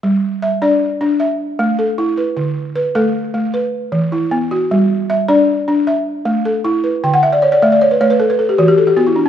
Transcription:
<<
  \new Staff \with { instrumentName = "Balafon" } { \time 12/8 \key g \lydian \tempo 4. = 103 << { r4 e''8 d''4. e''4. a'4 b'8~ | b'8 r8 b'8 a'4. b'4. e'4 fis'8~ | fis'8 r8 e''8 d''4. e''4. a'4 b'8~ | b'8 r1 r4. | } \\ { r1. | r1. | r1. | g''16 fis''16 e''16 d''16 cis''16 d''16 e''16 d''16 cis''16 b'16 cis''16 b'16 a'16 b'16 a'16 g'16 fis'16 g'16 a'16 g'16 fis'16 e'16 d'16 cis'16 | } >> }
  \new Staff \with { instrumentName = "Balafon" } { \time 12/8 \key g \lydian g4 r8 d'4 d'8 r4 a4 e'4 | d4 r8 a4 a8 r4 e4 b4 | g4 r8 d'4 d'8 r4 a4 e'4 | d4 r8 a4 a8 r4 e4 b4 | }
>>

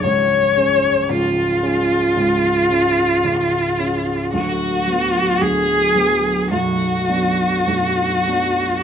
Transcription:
<<
  \new Staff \with { instrumentName = "Cello" } { \time 4/4 \key b \dorian \tempo 4 = 56 cis''4 eis'2. | fis'4 gis'4 fis'2 | }
  \new Staff \with { instrumentName = "Grand piano" } { \clef bass \time 4/4 \key b \dorian <cis,, cis,>8 <gis cis'>8 <cis,, cis,>8 <gis cis'>8 <cis,, cis,>8 <gis cis'>8 <cis,, cis,>8 <gis cis'>8 | <d,, d,>8 <fis b>8 <d,, d,>8 <fis b>8 <b,,, b,,>8 <fis b d'>8 <b,,, b,,>8 <fis b d'>8 | }
>>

